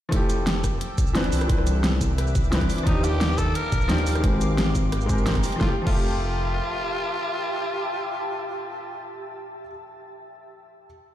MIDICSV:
0, 0, Header, 1, 6, 480
1, 0, Start_track
1, 0, Tempo, 342857
1, 174, Time_signature, 4, 2, 24, 8
1, 15603, End_track
2, 0, Start_track
2, 0, Title_t, "Ambient pad"
2, 0, Program_c, 0, 92
2, 170, Note_on_c, 0, 69, 79
2, 172, Note_on_c, 0, 79, 72
2, 173, Note_on_c, 0, 88, 87
2, 1835, Note_off_c, 0, 69, 0
2, 1836, Note_off_c, 0, 79, 0
2, 1836, Note_off_c, 0, 88, 0
2, 1852, Note_on_c, 0, 71, 80
2, 1852, Note_on_c, 0, 76, 75
2, 1852, Note_on_c, 0, 86, 86
2, 3991, Note_off_c, 0, 71, 0
2, 3991, Note_off_c, 0, 76, 0
2, 4013, Note_on_c, 0, 67, 80
2, 4015, Note_on_c, 0, 77, 73
2, 5892, Note_off_c, 0, 86, 0
2, 5914, Note_off_c, 0, 67, 0
2, 5915, Note_off_c, 0, 77, 0
2, 5936, Note_on_c, 0, 70, 81
2, 5936, Note_on_c, 0, 79, 72
2, 5938, Note_on_c, 0, 84, 88
2, 7835, Note_off_c, 0, 70, 0
2, 7835, Note_off_c, 0, 79, 0
2, 7836, Note_off_c, 0, 84, 0
2, 7855, Note_on_c, 0, 67, 83
2, 7857, Note_on_c, 0, 76, 75
2, 7857, Note_on_c, 0, 81, 91
2, 12758, Note_off_c, 0, 67, 0
2, 12759, Note_off_c, 0, 76, 0
2, 12759, Note_off_c, 0, 81, 0
2, 15603, End_track
3, 0, Start_track
3, 0, Title_t, "Tenor saxophone"
3, 0, Program_c, 1, 66
3, 4014, Note_on_c, 1, 63, 93
3, 4255, Note_on_c, 1, 67, 103
3, 4276, Note_off_c, 1, 63, 0
3, 4735, Note_on_c, 1, 69, 107
3, 4756, Note_off_c, 1, 67, 0
3, 4972, Note_on_c, 1, 70, 112
3, 4993, Note_off_c, 1, 69, 0
3, 5932, Note_off_c, 1, 70, 0
3, 7852, Note_on_c, 1, 65, 85
3, 7989, Note_off_c, 1, 65, 0
3, 8213, Note_on_c, 1, 65, 102
3, 12756, Note_off_c, 1, 65, 0
3, 15603, End_track
4, 0, Start_track
4, 0, Title_t, "Felt piano"
4, 0, Program_c, 2, 0
4, 122, Note_on_c, 2, 53, 93
4, 154, Note_on_c, 2, 57, 90
4, 187, Note_on_c, 2, 64, 90
4, 221, Note_on_c, 2, 67, 105
4, 425, Control_c, 2, 64, 127
4, 1560, Note_off_c, 2, 53, 0
4, 1576, Note_off_c, 2, 57, 0
4, 1588, Note_on_c, 2, 52, 94
4, 1592, Note_off_c, 2, 64, 0
4, 1604, Note_on_c, 2, 60, 83
4, 1609, Note_off_c, 2, 67, 0
4, 1620, Note_on_c, 2, 62, 86
4, 1635, Note_on_c, 2, 71, 106
4, 1874, Control_c, 2, 64, 0
4, 2022, Note_off_c, 2, 52, 0
4, 2043, Note_on_c, 2, 52, 82
4, 2055, Note_off_c, 2, 60, 0
4, 2068, Note_off_c, 2, 62, 0
4, 2076, Note_off_c, 2, 71, 0
4, 2076, Note_on_c, 2, 60, 73
4, 2109, Note_on_c, 2, 62, 73
4, 2119, Control_c, 2, 64, 127
4, 2142, Note_on_c, 2, 71, 90
4, 3480, Note_off_c, 2, 52, 0
4, 3496, Note_off_c, 2, 60, 0
4, 3511, Note_on_c, 2, 52, 75
4, 3513, Note_off_c, 2, 62, 0
4, 3527, Note_on_c, 2, 60, 71
4, 3529, Note_off_c, 2, 71, 0
4, 3543, Note_on_c, 2, 62, 68
4, 3559, Note_on_c, 2, 71, 85
4, 3965, Note_on_c, 2, 53, 97
4, 3974, Note_off_c, 2, 52, 0
4, 3976, Note_off_c, 2, 62, 0
4, 3982, Note_off_c, 2, 60, 0
4, 3997, Note_on_c, 2, 62, 92
4, 3998, Note_off_c, 2, 71, 0
4, 4030, Note_on_c, 2, 63, 93
4, 4033, Control_c, 2, 64, 0
4, 4062, Note_on_c, 2, 67, 104
4, 4266, Control_c, 2, 64, 127
4, 5401, Note_off_c, 2, 53, 0
4, 5417, Note_off_c, 2, 62, 0
4, 5427, Note_on_c, 2, 53, 97
4, 5433, Note_off_c, 2, 63, 0
4, 5444, Note_on_c, 2, 62, 89
4, 5450, Note_off_c, 2, 67, 0
4, 5460, Note_on_c, 2, 63, 86
4, 5477, Note_on_c, 2, 67, 109
4, 5885, Note_on_c, 2, 56, 83
4, 5892, Note_off_c, 2, 53, 0
4, 5900, Note_off_c, 2, 62, 0
4, 5908, Note_off_c, 2, 63, 0
4, 5917, Note_off_c, 2, 67, 0
4, 5917, Note_on_c, 2, 60, 76
4, 5950, Note_on_c, 2, 67, 76
4, 5952, Control_c, 2, 64, 0
4, 5983, Note_on_c, 2, 70, 88
4, 6155, Control_c, 2, 64, 127
4, 7062, Note_off_c, 2, 56, 0
4, 7083, Note_on_c, 2, 56, 89
4, 7095, Note_off_c, 2, 60, 0
4, 7116, Note_on_c, 2, 60, 82
4, 7118, Note_off_c, 2, 67, 0
4, 7134, Note_off_c, 2, 70, 0
4, 7148, Note_on_c, 2, 67, 85
4, 7181, Note_on_c, 2, 70, 96
4, 7779, Note_on_c, 2, 53, 84
4, 7800, Note_off_c, 2, 56, 0
4, 7816, Note_off_c, 2, 60, 0
4, 7828, Note_on_c, 2, 57, 77
4, 7832, Note_off_c, 2, 67, 0
4, 7849, Note_off_c, 2, 70, 0
4, 7872, Control_c, 2, 64, 0
4, 7877, Note_on_c, 2, 64, 79
4, 7926, Note_on_c, 2, 67, 95
4, 7949, Note_off_c, 2, 53, 0
4, 7976, Note_off_c, 2, 57, 0
4, 8002, Note_off_c, 2, 64, 0
4, 8028, Note_off_c, 2, 67, 0
4, 8142, Note_on_c, 2, 53, 89
4, 8149, Control_c, 2, 64, 127
4, 8191, Note_on_c, 2, 57, 81
4, 8240, Note_on_c, 2, 76, 78
4, 8289, Note_on_c, 2, 67, 94
4, 13429, Note_off_c, 2, 53, 0
4, 13478, Note_off_c, 2, 57, 0
4, 13527, Note_off_c, 2, 76, 0
4, 13575, Note_off_c, 2, 67, 0
4, 15208, Control_c, 2, 64, 0
4, 15603, End_track
5, 0, Start_track
5, 0, Title_t, "Detuned saw bass"
5, 0, Program_c, 3, 39
5, 172, Note_on_c, 3, 29, 104
5, 1114, Note_off_c, 3, 29, 0
5, 1373, Note_on_c, 3, 36, 82
5, 1590, Note_off_c, 3, 36, 0
5, 1613, Note_on_c, 3, 29, 83
5, 1830, Note_off_c, 3, 29, 0
5, 1854, Note_on_c, 3, 36, 82
5, 2070, Note_off_c, 3, 36, 0
5, 2093, Note_on_c, 3, 36, 104
5, 2794, Note_off_c, 3, 36, 0
5, 2815, Note_on_c, 3, 36, 103
5, 3755, Note_off_c, 3, 36, 0
5, 4014, Note_on_c, 3, 39, 100
5, 4955, Note_off_c, 3, 39, 0
5, 5213, Note_on_c, 3, 34, 89
5, 5430, Note_off_c, 3, 34, 0
5, 5452, Note_on_c, 3, 39, 83
5, 5669, Note_off_c, 3, 39, 0
5, 5692, Note_on_c, 3, 39, 88
5, 5909, Note_off_c, 3, 39, 0
5, 5932, Note_on_c, 3, 32, 102
5, 6634, Note_off_c, 3, 32, 0
5, 6653, Note_on_c, 3, 32, 104
5, 7594, Note_off_c, 3, 32, 0
5, 7853, Note_on_c, 3, 29, 102
5, 7989, Note_off_c, 3, 29, 0
5, 8215, Note_on_c, 3, 29, 95
5, 9237, Note_off_c, 3, 29, 0
5, 15603, End_track
6, 0, Start_track
6, 0, Title_t, "Drums"
6, 172, Note_on_c, 9, 36, 122
6, 173, Note_on_c, 9, 42, 97
6, 312, Note_off_c, 9, 36, 0
6, 313, Note_off_c, 9, 42, 0
6, 414, Note_on_c, 9, 42, 68
6, 414, Note_on_c, 9, 82, 60
6, 554, Note_off_c, 9, 42, 0
6, 554, Note_off_c, 9, 82, 0
6, 654, Note_on_c, 9, 38, 119
6, 654, Note_on_c, 9, 42, 94
6, 794, Note_off_c, 9, 38, 0
6, 794, Note_off_c, 9, 42, 0
6, 893, Note_on_c, 9, 36, 66
6, 895, Note_on_c, 9, 37, 51
6, 895, Note_on_c, 9, 42, 72
6, 895, Note_on_c, 9, 82, 61
6, 1033, Note_off_c, 9, 36, 0
6, 1035, Note_off_c, 9, 37, 0
6, 1035, Note_off_c, 9, 42, 0
6, 1035, Note_off_c, 9, 82, 0
6, 1134, Note_on_c, 9, 42, 94
6, 1274, Note_off_c, 9, 42, 0
6, 1373, Note_on_c, 9, 36, 108
6, 1376, Note_on_c, 9, 42, 69
6, 1376, Note_on_c, 9, 82, 59
6, 1498, Note_off_c, 9, 82, 0
6, 1498, Note_on_c, 9, 82, 28
6, 1513, Note_off_c, 9, 36, 0
6, 1516, Note_off_c, 9, 42, 0
6, 1615, Note_on_c, 9, 38, 118
6, 1615, Note_on_c, 9, 42, 92
6, 1638, Note_off_c, 9, 82, 0
6, 1737, Note_off_c, 9, 42, 0
6, 1737, Note_on_c, 9, 42, 38
6, 1755, Note_off_c, 9, 38, 0
6, 1854, Note_on_c, 9, 46, 75
6, 1854, Note_on_c, 9, 82, 61
6, 1877, Note_off_c, 9, 42, 0
6, 1977, Note_on_c, 9, 37, 59
6, 1977, Note_on_c, 9, 42, 39
6, 1994, Note_off_c, 9, 46, 0
6, 1994, Note_off_c, 9, 82, 0
6, 2093, Note_off_c, 9, 42, 0
6, 2093, Note_on_c, 9, 42, 94
6, 2094, Note_on_c, 9, 36, 127
6, 2117, Note_off_c, 9, 37, 0
6, 2217, Note_on_c, 9, 37, 58
6, 2233, Note_off_c, 9, 42, 0
6, 2234, Note_off_c, 9, 36, 0
6, 2333, Note_on_c, 9, 42, 68
6, 2333, Note_on_c, 9, 82, 57
6, 2357, Note_off_c, 9, 37, 0
6, 2473, Note_off_c, 9, 42, 0
6, 2473, Note_off_c, 9, 82, 0
6, 2573, Note_on_c, 9, 38, 125
6, 2573, Note_on_c, 9, 42, 93
6, 2713, Note_off_c, 9, 38, 0
6, 2713, Note_off_c, 9, 42, 0
6, 2814, Note_on_c, 9, 36, 67
6, 2817, Note_on_c, 9, 42, 69
6, 2817, Note_on_c, 9, 82, 60
6, 2954, Note_off_c, 9, 36, 0
6, 2957, Note_off_c, 9, 42, 0
6, 2957, Note_off_c, 9, 82, 0
6, 3057, Note_on_c, 9, 37, 57
6, 3057, Note_on_c, 9, 42, 91
6, 3180, Note_on_c, 9, 82, 27
6, 3197, Note_off_c, 9, 37, 0
6, 3197, Note_off_c, 9, 42, 0
6, 3294, Note_on_c, 9, 36, 111
6, 3296, Note_off_c, 9, 82, 0
6, 3296, Note_on_c, 9, 42, 67
6, 3296, Note_on_c, 9, 82, 56
6, 3420, Note_off_c, 9, 82, 0
6, 3420, Note_on_c, 9, 82, 28
6, 3434, Note_off_c, 9, 36, 0
6, 3436, Note_off_c, 9, 42, 0
6, 3536, Note_on_c, 9, 38, 122
6, 3536, Note_on_c, 9, 42, 94
6, 3560, Note_off_c, 9, 82, 0
6, 3657, Note_on_c, 9, 36, 65
6, 3659, Note_off_c, 9, 42, 0
6, 3659, Note_on_c, 9, 37, 37
6, 3659, Note_on_c, 9, 42, 39
6, 3676, Note_off_c, 9, 38, 0
6, 3775, Note_on_c, 9, 46, 80
6, 3775, Note_on_c, 9, 82, 58
6, 3797, Note_off_c, 9, 36, 0
6, 3799, Note_off_c, 9, 37, 0
6, 3799, Note_off_c, 9, 42, 0
6, 3896, Note_on_c, 9, 42, 39
6, 3915, Note_off_c, 9, 46, 0
6, 3915, Note_off_c, 9, 82, 0
6, 4014, Note_off_c, 9, 42, 0
6, 4014, Note_on_c, 9, 36, 127
6, 4014, Note_on_c, 9, 42, 94
6, 4154, Note_off_c, 9, 36, 0
6, 4154, Note_off_c, 9, 42, 0
6, 4254, Note_on_c, 9, 42, 64
6, 4254, Note_on_c, 9, 82, 56
6, 4394, Note_off_c, 9, 42, 0
6, 4394, Note_off_c, 9, 82, 0
6, 4495, Note_on_c, 9, 38, 123
6, 4495, Note_on_c, 9, 42, 89
6, 4635, Note_off_c, 9, 38, 0
6, 4635, Note_off_c, 9, 42, 0
6, 4734, Note_on_c, 9, 36, 67
6, 4734, Note_on_c, 9, 37, 50
6, 4734, Note_on_c, 9, 42, 66
6, 4734, Note_on_c, 9, 82, 58
6, 4874, Note_off_c, 9, 36, 0
6, 4874, Note_off_c, 9, 37, 0
6, 4874, Note_off_c, 9, 42, 0
6, 4874, Note_off_c, 9, 82, 0
6, 4974, Note_on_c, 9, 42, 87
6, 5114, Note_off_c, 9, 42, 0
6, 5213, Note_on_c, 9, 36, 112
6, 5213, Note_on_c, 9, 42, 64
6, 5213, Note_on_c, 9, 82, 57
6, 5336, Note_off_c, 9, 82, 0
6, 5336, Note_on_c, 9, 82, 26
6, 5353, Note_off_c, 9, 36, 0
6, 5353, Note_off_c, 9, 42, 0
6, 5452, Note_on_c, 9, 38, 126
6, 5452, Note_on_c, 9, 42, 92
6, 5476, Note_off_c, 9, 82, 0
6, 5576, Note_off_c, 9, 42, 0
6, 5576, Note_on_c, 9, 42, 36
6, 5592, Note_off_c, 9, 38, 0
6, 5694, Note_on_c, 9, 46, 83
6, 5694, Note_on_c, 9, 82, 60
6, 5716, Note_off_c, 9, 42, 0
6, 5817, Note_on_c, 9, 37, 58
6, 5817, Note_on_c, 9, 42, 36
6, 5834, Note_off_c, 9, 46, 0
6, 5834, Note_off_c, 9, 82, 0
6, 5933, Note_off_c, 9, 42, 0
6, 5933, Note_on_c, 9, 36, 127
6, 5933, Note_on_c, 9, 42, 93
6, 5957, Note_off_c, 9, 37, 0
6, 6058, Note_on_c, 9, 37, 54
6, 6073, Note_off_c, 9, 36, 0
6, 6073, Note_off_c, 9, 42, 0
6, 6175, Note_on_c, 9, 42, 66
6, 6175, Note_on_c, 9, 82, 59
6, 6198, Note_off_c, 9, 37, 0
6, 6315, Note_off_c, 9, 42, 0
6, 6315, Note_off_c, 9, 82, 0
6, 6415, Note_on_c, 9, 38, 119
6, 6415, Note_on_c, 9, 42, 88
6, 6555, Note_off_c, 9, 38, 0
6, 6555, Note_off_c, 9, 42, 0
6, 6653, Note_on_c, 9, 36, 69
6, 6653, Note_on_c, 9, 42, 64
6, 6653, Note_on_c, 9, 82, 59
6, 6793, Note_off_c, 9, 36, 0
6, 6793, Note_off_c, 9, 42, 0
6, 6793, Note_off_c, 9, 82, 0
6, 6893, Note_on_c, 9, 37, 53
6, 6893, Note_on_c, 9, 42, 88
6, 7016, Note_on_c, 9, 82, 26
6, 7033, Note_off_c, 9, 37, 0
6, 7033, Note_off_c, 9, 42, 0
6, 7132, Note_off_c, 9, 82, 0
6, 7132, Note_on_c, 9, 42, 63
6, 7132, Note_on_c, 9, 82, 57
6, 7133, Note_on_c, 9, 36, 109
6, 7255, Note_off_c, 9, 82, 0
6, 7255, Note_on_c, 9, 82, 27
6, 7272, Note_off_c, 9, 42, 0
6, 7273, Note_off_c, 9, 36, 0
6, 7371, Note_on_c, 9, 38, 123
6, 7371, Note_on_c, 9, 42, 87
6, 7395, Note_off_c, 9, 82, 0
6, 7494, Note_off_c, 9, 42, 0
6, 7494, Note_on_c, 9, 37, 36
6, 7494, Note_on_c, 9, 42, 35
6, 7496, Note_on_c, 9, 36, 65
6, 7511, Note_off_c, 9, 38, 0
6, 7610, Note_on_c, 9, 46, 83
6, 7610, Note_on_c, 9, 82, 58
6, 7634, Note_off_c, 9, 37, 0
6, 7634, Note_off_c, 9, 42, 0
6, 7636, Note_off_c, 9, 36, 0
6, 7733, Note_on_c, 9, 42, 36
6, 7750, Note_off_c, 9, 46, 0
6, 7750, Note_off_c, 9, 82, 0
6, 7850, Note_on_c, 9, 38, 86
6, 7852, Note_on_c, 9, 36, 119
6, 7873, Note_off_c, 9, 42, 0
6, 7990, Note_off_c, 9, 38, 0
6, 7992, Note_off_c, 9, 36, 0
6, 8215, Note_on_c, 9, 36, 117
6, 8215, Note_on_c, 9, 49, 87
6, 8355, Note_off_c, 9, 36, 0
6, 8355, Note_off_c, 9, 49, 0
6, 15603, End_track
0, 0, End_of_file